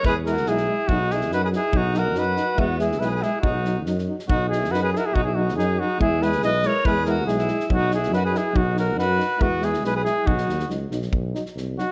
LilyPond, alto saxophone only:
\new Staff \with { instrumentName = "Alto saxophone" } { \time 2/4 \key b \major \tempo 4 = 141 gis'8 fis'8 e'4 | dis'8 e'8 fis'16 gis'16 e'8 | dis'8 fis'8 fis'4 | b8 e'8 gis'16 gis'16 e'8 |
dis'4 r4 | dis'8 e'8 fis'16 gis'16 e'32 fis'32 e'16 | dis'16 e'16 dis'8 dis'8 dis'8 | e'8 gis'8 b'8 ais'8 |
gis'8 fis'8 e'4 | dis'8 e'8 fis'16 gis'16 e'8 | dis'8 fis'8 fis'4 | b8 e'8 gis'16 gis'16 e'8 |
dis'4 r4 | r2 | }